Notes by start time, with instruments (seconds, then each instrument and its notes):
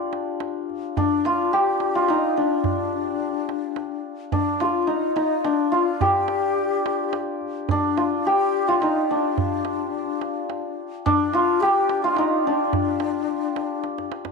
Already playing: santur D4 F4 G4
0.13 tombak tek
0.40 tombak tek
0.70 tombak ka
0.97 ney D4, santur D4, tombak dum
1.25 ney F4, santur F4, tombak tek
1.52 ney G4, santur G4
1.80 tombak tek
1.95 santur F4
2.08 ney D#4, santur D#4, tombak tek
2.37 ney D4, santur D4
2.64 tombak dum
3.49 tombak tek
3.76 tombak tek
4.32 santur D4, ney D4, tombak dum
4.60 santur F4, ney G4, tombak tek
4.66 ney F4
4.82 ney F4
4.87 santur D#4, ney D#4
5.16 santur D#4, ney D#4, tombak tek
5.44 santur D4, ney D4, tombak tek
5.72 santur F4, ney F4
6.01 santur G4, ney G#4, tombak dum
6.06 ney G4
6.28 tombak tek
6.58 tombak ka
6.86 tombak tek
7.13 tombak tek
7.41 tombak ka
7.69 ney D4, santur D4, tombak dum
7.97 santur F4, tombak tek
8.26 ney G4, santur G4
8.68 ney F4, santur F4
8.81 ney D#4, santur D#4, tombak tek
9.10 ney D4, santur D4
9.38 tombak dum
9.65 tombak tek
10.21 tombak tek
10.50 tombak tek
11.05 santur D4, ney D#4, tombak dum
11.10 ney D4
11.34 ney F4, santur F4, tombak tek
11.61 santur G4, ney G#4
11.65 ney G4
11.89 tombak tek
12.03 ney F4, santur F4
12.15 ney D#4, santur D#4, tombak tek
12.45 ney C#4, santur D4
12.56 ney D4
12.73 tombak dum
13.00 tombak tek
13.29 tombak ka
13.56 tombak tek
13.84 tombak tek
13.98 tombak ka
14.12 tombak tek
14.25 tombak ka